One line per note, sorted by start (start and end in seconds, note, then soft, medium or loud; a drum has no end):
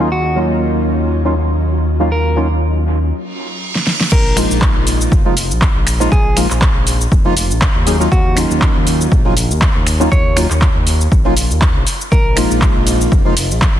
0.00 3.12 D#2 medium
0.00 3.09 F#3 medium
0.00 3.09 C#4 medium
0.00 0.09 C#4 medium
0.00 0.09 D#4 medium
0.00 3.08 F4 medium
0.00 0.09 F4 medium
0.00 3.08 D#5 medium
0.12 0.38 F#4 medium
0.36 1.22 F#3 medium
0.36 1.22 A#3 medium
0.36 1.22 C#4 medium
0.36 1.22 D#4 medium
0.36 1.23 F4 medium
1.25 1.34 F#3 medium
1.25 1.34 A#3 medium
1.25 1.34 C#4 medium
1.25 1.34 D#4 medium
1.25 1.34 F4 medium
2.00 2.09 F#3 medium
2.00 2.09 A#3 medium
2.00 2.09 C#4 medium
2.00 2.09 D#4 medium
2.00 2.09 F4 loud
2.12 2.38 A#4 medium
2.36 2.47 F#3 medium
2.36 2.47 A#3 medium
2.36 2.47 C#4 medium
2.36 2.47 D#4 medium
2.36 2.47 F4 medium
3.12 reverse cymbal medium
3.75 snare soft
3.87 snare medium
4.01 snare medium
4.12 4.45 A#1 loud
4.12 4.38 A#4 loud
4.12 kick loud
4.12 crash loud
4.12 shaker soft
4.36 5.22 F3 medium
4.36 5.22 G#3 medium
4.36 5.22 A#3 medium
4.36 5.22 D#4 medium
4.36 5.23 F4 medium
4.36 finger snap medium
4.36 open hi-hat loud
4.36 shaker medium
4.51 4.69 A#1 medium
4.51 shaker soft
4.62 kick loud
4.62 clap loud
4.62 shaker soft
4.75 5.07 A#1 loud
4.87 open hi-hat loud
4.87 shaker medium
5.01 shaker soft
5.12 5.52 F1 medium
5.12 kick loud
5.12 shaker soft
5.25 5.34 F3 medium
5.25 5.34 G#3 medium
5.25 5.34 A#3 medium
5.25 5.34 D#4 medium
5.25 5.34 F4 medium
5.37 open hi-hat loud
5.37 shaker medium
5.51 5.69 A#1 medium
5.51 shaker soft
5.62 kick loud
5.62 clap loud
5.62 shaker soft
5.75 6.07 A#1 loud
5.87 finger snap medium
5.87 open hi-hat loud
5.87 shaker medium
6.00 6.09 F3 loud
6.00 6.09 G#3 medium
6.00 6.09 A#3 medium
6.00 6.09 D#4 medium
6.00 6.09 F4 loud
6.00 shaker soft
6.12 6.45 A#1 medium
6.12 6.38 G#4 loud
6.12 kick loud
6.12 shaker soft
6.36 6.47 F3 medium
6.36 6.47 G#3 medium
6.36 6.47 A#3 medium
6.36 6.47 D#4 medium
6.36 6.47 F4 loud
6.36 finger snap medium
6.36 open hi-hat loud
6.36 shaker medium
6.50 6.69 A#1 medium
6.50 clap soft
6.50 shaker soft
6.62 kick loud
6.62 clap loud
6.62 shaker soft
6.75 7.07 A#1 loud
6.87 open hi-hat loud
6.87 shaker medium
7.01 shaker soft
7.12 7.52 F1 medium
7.12 kick loud
7.12 shaker soft
7.25 7.34 F3 loud
7.25 7.34 G#3 medium
7.25 7.34 A#3 medium
7.25 7.34 D#4 medium
7.25 7.34 F4 loud
7.37 open hi-hat loud
7.37 shaker medium
7.50 7.69 A#1 medium
7.50 shaker soft
7.62 kick loud
7.62 clap loud
7.62 shaker soft
7.75 8.07 D#2 medium
7.86 7.97 F#3 medium
7.86 7.97 A#3 medium
7.86 7.97 C#4 medium
7.86 7.97 D#4 medium
7.86 7.97 G#4 medium
7.86 open hi-hat loud
7.86 shaker medium
8.00 8.09 F#3 medium
8.00 8.09 A#3 medium
8.00 8.09 C#4 medium
8.00 8.09 D#4 medium
8.00 8.09 F4 loud
8.00 shaker soft
8.12 8.45 D#2 loud
8.12 8.38 F#4 loud
8.12 kick loud
8.12 shaker soft
8.36 9.22 F#3 medium
8.36 9.22 A#3 medium
8.36 9.22 C#4 medium
8.36 9.22 D#4 medium
8.36 9.23 F4 medium
8.36 finger snap medium
8.36 open hi-hat loud
8.36 shaker medium
8.50 8.69 D#2 medium
8.50 shaker soft
8.62 kick loud
8.62 clap loud
8.62 shaker soft
8.75 9.07 D#2 loud
8.87 open hi-hat loud
8.87 shaker medium
9.01 shaker soft
9.12 9.52 A#1 medium
9.12 kick loud
9.12 shaker soft
9.25 9.34 F#3 medium
9.25 9.34 A#3 medium
9.25 9.34 C#4 medium
9.25 9.34 D#4 medium
9.25 9.34 F4 medium
9.37 open hi-hat loud
9.37 shaker medium
9.50 9.69 D#2 medium
9.50 shaker soft
9.62 kick loud
9.62 clap loud
9.62 shaker soft
9.75 10.07 D#2 loud
9.87 finger snap medium
9.87 open hi-hat loud
9.87 shaker medium
10.00 10.09 F#3 loud
10.00 10.09 A#3 medium
10.00 10.09 C#4 medium
10.00 10.09 D#4 medium
10.00 10.09 F4 loud
10.00 shaker soft
10.12 10.45 D#2 loud
10.12 10.38 C#5 loud
10.12 kick loud
10.12 shaker soft
10.36 10.47 F#3 medium
10.36 10.47 A#3 medium
10.36 10.47 C#4 medium
10.36 10.47 D#4 medium
10.36 10.47 F4 medium
10.36 finger snap medium
10.36 open hi-hat loud
10.36 shaker medium
10.50 10.69 D#2 medium
10.50 clap soft
10.50 shaker soft
10.62 kick loud
10.62 clap loud
10.62 shaker soft
10.75 11.07 D#2 loud
10.87 open hi-hat loud
10.87 shaker medium
11.01 shaker soft
11.12 11.52 A#1 medium
11.12 kick loud
11.12 shaker soft
11.25 11.34 F#3 loud
11.25 11.34 A#3 medium
11.25 11.34 C#4 medium
11.25 11.34 D#4 medium
11.25 11.34 F4 loud
11.37 open hi-hat loud
11.37 shaker medium
11.51 11.77 D#2 medium
11.51 shaker soft
11.62 kick loud
11.62 clap loud
11.62 shaker soft
11.75 11.84 A#1 loud
11.87 open hi-hat loud
11.87 shaker medium
12.01 shaker soft
12.12 12.45 A#1 loud
12.12 12.38 A#4 loud
12.12 kick loud
12.12 shaker soft
12.36 13.22 F3 medium
12.36 13.22 G#3 medium
12.36 13.22 A#3 medium
12.36 13.23 D#4 medium
12.36 13.23 F4 medium
12.36 finger snap medium
12.36 open hi-hat loud
12.36 ride medium
12.36 shaker medium
12.51 12.69 A#1 medium
12.51 shaker soft
12.62 kick loud
12.62 clap loud
12.62 shaker soft
12.76 13.07 A#1 loud
12.87 open hi-hat loud
12.87 ride medium
12.87 shaker medium
13.01 shaker soft
13.12 13.52 F1 medium
13.12 kick loud
13.12 shaker soft
13.25 13.34 F3 medium
13.25 13.34 G#3 medium
13.25 13.34 A#3 medium
13.25 13.34 D#4 medium
13.25 13.34 F4 medium
13.37 open hi-hat loud
13.37 ride medium
13.37 shaker medium
13.51 13.69 A#1 medium
13.51 shaker soft
13.62 kick loud
13.62 clap loud
13.62 shaker soft
13.76 13.80 A#1 medium